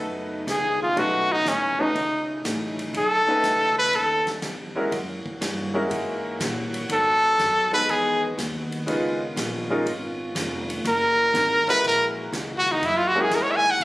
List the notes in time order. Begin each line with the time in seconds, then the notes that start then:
Already playing: F#2 C#3 A3 B3 C#4 D#4 F#4 B4
0.47 C#2 G#4, kick, snare, hi-hat pedal, ride
0.82 F4
0.96 B1 A3 C#4 D#4 F#4 B4, kick, ride
1.32 D#4
1.46 A1 C#4, kick, snare, hi-hat pedal, ride
1.79 A3 C#4 D#4 F#4 B4
1.95 C#2 C#4, kick, ride
2.45 A1, kick, snare, hi-hat pedal, ride
2.79 ride
2.94 B1 A4, kick, ride
3.27 A3 C#4 D#4 F#4 B4, muted upright bass stroke
3.43 C#2, kick, snare, hi-hat pedal, ride
3.78 B4
3.93 D#2 A4, kick, ride
4.27 snare, ride
4.42 E2, kick, snare, hi-hat pedal, ride
4.75 G#3 C#4 E4 F#4 A#4
4.91 F#2 E3 F#3 A#3 F#4, kick, ride
5.25 muted upright bass stroke, kick
5.41 G2, kick, snare, hi-hat pedal, ride
5.74 G#3 C#4 E4 F#4 A#4
5.90 G#2, kick, ride
6.40 A#2, kick, snare, hi-hat pedal, ride
6.74 ride
6.89 G#2 D#3 B3 A4, kick, ride
7.39 F#2, kick, snare, hi-hat pedal, ride
7.72 G#3 B3 D#4 F#4 B4, ride
7.88 E2 G#4, kick, ride
8.38 D#2, kick, snare, hi-hat pedal, ride
8.72 ride
8.86 C#2 G#3 C#4 D#4 F4 B4, kick, ride
9.36 A#1, kick, snare, hi-hat pedal, ride
9.70 G#3 C#4 D#4 F4 A#4
9.86 G#1, kick, ride
10.35 F1, kick, snare, hi-hat pedal, ride
10.70 ride
10.84 F#1 E3 G#3 A#3 F#4 A#4, kick, ride
11.34 G#1, kick, snare, hi-hat pedal, ride
11.66 G#3 C#4 E4 F#4 A#4 B4, muted upright bass stroke, ride
11.83 A#1, kick, ride
11.87 A#4
12.32 C#2, kick, snare, hi-hat pedal, ride
12.58 F#4
12.67 ride
12.72 D#4
12.82 F#2 E4, kick, ride
12.97 F4
13.07 F#4
13.14 G#3 C#4 E4 F#4 A#4
13.21 G#4
13.31 G#2, kick, snare, hi-hat pedal, ride
13.35 A#4
13.42 C#5
13.51 E5
13.56 G#5
13.66 ride
13.71 F#5
13.80 A#2, kick, ride